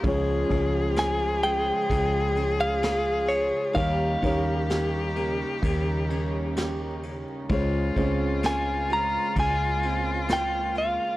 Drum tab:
RD |xxxxxxxx|xxxxxxxx|xxxxxxxx|
SD |--o---o-|--o---o-|--o---o-|
BD |oo--o---|oo--o---|oo--o---|